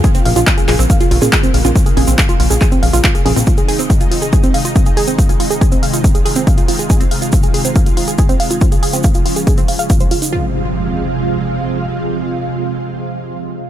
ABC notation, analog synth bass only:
X:1
M:4/4
L:1/16
Q:1/4=140
K:Fm
V:1 name="Analog synth bass" clef=bass
z2 B,,, B,,, z2 B,,, B,,, z2 B,,, B,,, z2 B,,, B,,, | z2 B,,, B,,, z2 B,,, B,,, z2 B,,, B,,, z2 B,,, B,,, | z16 | z16 |
z16 | z16 | z16 | z16 |]